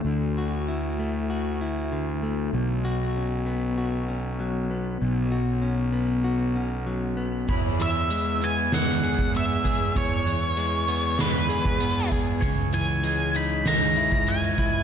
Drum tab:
CC |----------------|----------------|----------------|x---------------|
HH |----------------|----------------|----------------|--x-x-x-x-x-x-x-|
SD |----------------|----------------|----------------|--------o-------|
BD |----------------|----------------|----------------|o----------o--o-|

CC |----------------|----------------|
HH |x-x-x-x-x-x-x-x-|x-x-x-x-x-x-x-x-|
SD |--------o-------|--------o----o--|
BD |o----------o--o-|o----------o--o-|